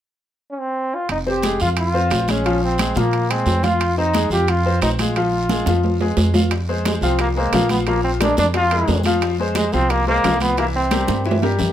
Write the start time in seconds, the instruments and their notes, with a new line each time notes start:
0.51 trombone C#4
0.60 trombone C4
0.95 trombone F4
1.09 upright bass F1, trombone D#4, high conga, high timbale, long guiro
1.27 upright piano C4 C5, trombone G4, high conga
1.43 upright piano G#3 G#4, high conga, high timbale, low timbale, short guiro
1.60 upright bass F2, upright piano F4 F5, trombone F4, high conga, short guiro
1.76 trombone F4, high conga, high timbale, long guiro
1.94 upright piano C4 C5, high conga
2.10 upright bass A#1, high conga, high timbale, low timbale, short guiro
2.28 upright piano G#3 G#4, trombone C#4, high conga, high timbale, short guiro
2.44 upright piano F3 F4, high conga, high timbale, long guiro
2.63 trombone C4, high conga
2.78 upright piano G#3 G#4, high conga, high timbale, low timbale, short guiro
2.95 upright bass A#2, upright piano F3 F4, trombone A#3, high conga, short guiro
3.11 high conga, high timbale, long guiro
3.30 upright piano G#3 G#4, trombone C4, high conga, high timbale
3.46 upright bass F2, high conga, low timbale, short guiro
3.63 upright piano F4 F5, trombone F4, high conga, high timbale, short guiro
3.80 high conga, high timbale, long guiro
3.98 upright piano C4 C5, trombone D#4, high conga
4.14 upright piano G#3 G#4, high conga, high timbale, low timbale, short guiro
4.30 upright bass F2, upright piano F4 F5, trombone G4, high conga, short guiro
4.48 trombone F4, high conga, high timbale, long guiro
4.65 upright piano C4 C5, high conga
4.82 upright bass A#1, trombone D#4, high conga, high timbale, low timbale, short guiro
4.99 upright piano G#3 G#4, trombone F4, high conga, high timbale, short guiro
5.16 upright piano F3 F4, high conga, high timbale, long guiro
5.33 high conga
5.49 upright piano G#3 G#4, high conga, high timbale, short guiro
5.66 upright bass F2, upright piano F3 F4, high conga, high timbale, short guiro
5.83 high conga, low timbale, long guiro
6.01 upright piano G#3 G#4, high conga, low timbale
6.17 upright bass F2, low timbale, short guiro
6.34 upright piano F4 F5, high conga, low timbale, short guiro
6.51 high bongo, high conga, high timbale, long guiro
6.69 upright piano G#3 G#4 C5, high conga
6.85 trombone G#3, high bongo, high conga, high timbale, low timbale, short guiro
7.01 upright bass C2, upright piano F3 F4 F5, trombone C4, high bongo, high conga, short guiro
7.19 trombone A#3, high bongo, high conga, high timbale, long guiro
7.36 upright piano G#3 G#4 C5, trombone A#3, high bongo, high conga
7.52 upright bass A#1, upright piano F3 F4 F5, high bongo, low bongo, high conga, high timbale, low timbale, short guiro
7.69 trombone B3, high bongo, high conga, high timbale, short guiro
7.87 upright piano F3 F4 F5, trombone A#3, high bongo, high conga, high timbale, long guiro
8.04 trombone C4, high conga
8.20 upright piano G#3 G#4 A#4, trombone D4, high bongo, high conga, high timbale, low timbale, short guiro
8.37 upright bass F2, trombone D4, high bongo, high conga, short guiro
8.54 upright piano F3 F4 F5, trombone F4, high bongo, high conga, high timbale, long guiro
8.71 upright piano G#3 G#4 A#4, high bongo, high conga, high timbale
8.87 upright bass F2, high bongo, low bongo, high conga, low timbale, short guiro
9.04 upright piano F3 F4 F5, high bongo, high conga, high timbale, short guiro
9.21 high bongo, high conga, high timbale, long guiro
9.38 upright piano G#3 G#4 C5, high conga
9.55 trombone G#3, high bongo, high conga, high timbale, low timbale, short guiro
9.72 upright bass C2, upright piano F3 F4 F5, trombone C4, high bongo, high conga, short guiro
9.89 trombone A#3, high bongo, high conga, high timbale, long guiro
10.07 upright piano G#3 G#4 C5, trombone A#3, high bongo, high conga
10.23 upright bass C2, upright piano F3 F4 F5, high bongo, low bongo, high conga, high timbale, low timbale, short guiro
10.40 trombone B3, high bongo, high conga, high timbale, short guiro
10.57 upright piano E3 E4 E5, trombone A#3, high bongo, high conga, high timbale, long guiro
10.75 trombone C4, high conga
10.91 upright piano G3 G4 A#4, high bongo, high conga, high timbale, low timbale, short guiro
11.07 upright bass G2, high bongo, high conga, high timbale, short guiro
11.25 upright piano E3 E4 E5, high bongo, high conga, long guiro
11.31 low timbale
11.41 upright piano G3 G4 A#4, high bongo, high conga, high timbale
11.58 upright bass F2, high bongo, low bongo, high conga, short guiro